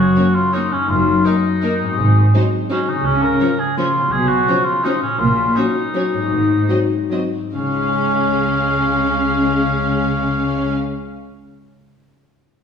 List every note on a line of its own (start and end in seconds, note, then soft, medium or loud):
0.00 0.71 F#2 soft
0.00 0.75 A#3 soft
0.00 0.87 C#4 soft
0.00 0.37 F#4 medium
0.00 0.84 A#4 soft
0.00 0.91 C#5 soft
0.16 0.25 A#3 soft
0.16 0.24 C#4 soft
0.16 0.24 C#5 soft
0.35 0.55 F4 medium
0.53 0.62 A#3 soft
0.53 0.63 C#4 soft
0.53 0.74 D#4 medium
0.53 0.61 C#5 soft
0.72 1.90 F#2 soft
0.72 0.90 C#4 soft
0.76 1.92 A#3 soft
0.81 3.02 D#4 soft
0.85 1.27 F4 medium
0.85 1.97 A#4 soft
0.90 1.18 F#1 soft
0.90 1.20 F#2 soft
1.24 1.34 A#3 soft
1.24 2.52 D#4 soft
1.24 1.34 D#4 soft
1.24 1.32 A#4 soft
1.62 1.71 A#3 soft
1.62 1.70 D#4 soft
1.62 1.71 A#4 soft
1.80 2.97 G#2 soft
1.84 2.99 C4 soft
1.88 3.02 F#4 soft
1.93 2.99 G#4 soft
1.97 2.26 G#1 soft
1.97 2.27 G#2 medium
2.34 2.42 F#3 soft
2.34 2.43 D#4 soft
2.34 2.42 C5 soft
2.69 2.78 F#3 soft
2.69 2.90 C#4 medium
2.69 2.78 D#4 soft
2.69 2.79 C5 soft
2.87 4.04 C#3 soft
2.87 3.06 D#4 soft
2.91 3.97 C#4 soft
2.96 4.02 F4 soft
3.00 4.06 G#4 soft
3.05 3.33 C#2 soft
3.05 3.34 C#3 soft
3.05 3.24 C#4 medium
3.23 3.61 A#4 medium
3.40 3.49 F3 soft
3.40 3.49 C#4 soft
3.40 3.48 C#5 soft
3.59 3.77 G#4 medium
3.77 3.86 F3 soft
3.77 3.86 C#4 soft
3.77 4.13 F4 medium
3.77 3.86 C#5 soft
3.94 5.11 B2 soft
3.98 5.05 C#4 soft
4.03 5.15 F4 soft
4.07 5.18 G#4 soft
4.12 4.39 B1 soft
4.12 4.41 B2 soft
4.12 4.29 G#4 medium
4.28 4.66 F#4 medium
4.48 4.56 F3 soft
4.48 4.57 C#4 soft
4.48 4.56 C#5 soft
4.65 4.85 F4 medium
4.84 4.93 F3 soft
4.84 4.93 C#4 soft
4.84 5.01 D#4 medium
4.84 4.92 C#5 soft
5.01 6.23 A#2 soft
5.01 5.20 C#4 medium
5.06 6.25 C#4 soft
5.10 6.21 F#4 soft
5.15 5.57 F4 medium
5.15 6.29 A#4 soft
5.19 5.47 A#1 soft
5.19 5.48 A#2 soft
5.55 5.65 F#3 soft
5.55 5.64 C#4 soft
5.55 6.90 D#4 soft
5.55 5.64 C#5 soft
5.94 6.02 F#3 soft
5.94 6.02 C#4 soft
5.94 6.04 C#5 soft
6.13 7.46 G#2 soft
6.17 7.49 D#4 soft
6.22 7.51 F#4 soft
6.26 7.53 C5 soft
6.30 6.60 G#1 soft
6.30 6.62 G#2 soft
6.69 6.77 F#3 soft
6.69 6.78 C4 soft
6.69 6.77 D#5 soft
7.11 7.19 F#3 soft
7.11 7.20 C4 soft
7.11 7.19 D#5 soft
7.53 10.75 C#2 soft
7.53 10.74 C#3 soft
7.53 11.44 C#3 soft
7.53 10.74 G#3 soft
7.53 10.74 C#4 soft
7.53 10.75 C#4 soft
7.53 10.75 F5 soft
7.60 11.48 C#4 soft
7.67 11.51 F4 soft
7.74 11.55 G#4 soft
7.81 11.58 C#5 soft
7.88 11.62 G#5 soft